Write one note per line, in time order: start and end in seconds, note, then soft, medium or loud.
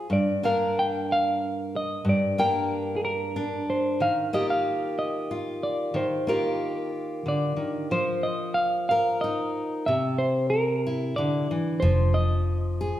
0.10 2.03 G2 medium
0.10 0.42 D5 medium
0.43 2.38 A#3 soft
0.43 1.41 D4 soft
0.43 2.39 A#4 medium
0.43 0.78 F5 medium
0.79 1.08 G5 medium
1.12 1.76 F5 medium
1.76 2.05 D#5 medium
2.05 4.00 G2 medium
2.09 2.41 D5 medium
2.38 4.33 A#3 soft
2.38 3.35 D4 soft
2.38 4.34 A#4 soft
2.38 2.99 G5 medium
2.96 3.03 G#4 medium
3.05 3.65 A#4 medium
3.36 4.01 D4 medium
3.70 4.02 C5 medium
4.00 5.92 D#3 medium
4.00 4.34 F5 medium
4.33 6.26 A#3 soft
4.33 5.30 F4 soft
4.33 6.28 G4 medium
4.33 4.50 D#5 medium
4.50 4.98 F5 medium
4.99 5.63 D#5 medium
5.31 5.97 F4 soft
5.63 5.97 D5 medium
5.94 7.25 D#3 medium
5.94 6.29 C5 medium
6.27 9.88 A#3 soft
6.27 7.88 F4 soft
6.27 7.93 G4 soft
6.27 6.90 A#4 medium
7.26 7.56 D3 soft
7.26 7.95 D5 medium
7.56 7.91 D#3 soft
7.91 9.88 F3 medium
7.91 8.26 C5 medium
8.23 8.54 D#5 medium
8.54 8.86 F5 medium
8.89 9.84 A#4 medium
8.89 9.21 F5 medium
9.21 9.85 D#4 soft
9.21 9.86 D#5 medium
9.86 11.18 C3 medium
9.86 10.18 E5 medium
10.18 10.50 C5 medium
10.50 11.19 A#4 medium
10.87 11.80 E4 soft
11.16 11.50 D3 medium
11.16 11.84 D5 medium
11.51 11.83 E3 medium
11.80 12.93 F1 medium
11.80 13.00 F3 medium
11.80 12.15 C5 medium
12.14 13.00 D#5 medium
12.81 13.00 G#4 medium